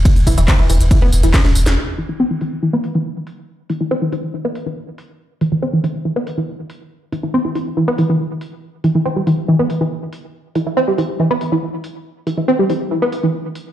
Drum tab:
RD |x---x---x---x---|----------------|----------------|----------------|
HH |xooxx-oxx-oxx-ox|--o---o---o---o-|--o---o---o---o-|--o---o---o---o-|
TB |xxxxxxxxxxxxxxxx|----------------|----------------|----------------|
CP |----x-------x---|----------------|----------------|----------------|
SD |------------oo-o|----------------|----------------|----------------|
BD |o-o-o---o---o---|----------------|----------------|----------------|

RD |----------------|----------------|----------------|----------------|
HH |--o---o---o---o-|--o---o---o---o-|--o---o---o---o-|--o---o---o---o-|
TB |----------------|----------------|----------------|----------------|
CP |----------------|----------------|----------------|----------------|
SD |----------------|----------------|----------------|----------------|
BD |----------------|----------------|----------------|----------------|